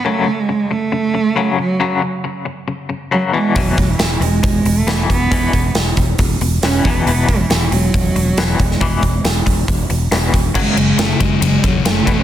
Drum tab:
CC |----------------|----------------|----------------|----------------|
RD |----------------|----------------|----------------|----------------|
HH |----------------|----------------|o-o-o-o-o-o-o-o-|o-o-o-o-o-o-o-o-|
SD |----------------|----------------|----o-------o---|----o-------o---|
BD |----------------|----------------|o-o-----o-----o-|o-o---o-o-----o-|

CC |----------------|----------------|x---------------|
RD |----------------|----------------|--x-x-x-x-x-x-x-|
HH |o-o-o-o-o-o-o-o-|o-o-o-o-o-o-o-o-|----------------|
SD |----o-------o--o|----o-------o---|----o-------o---|
BD |--o-----o-----o-|o-o---o-o-----o-|o-----o---o---o-|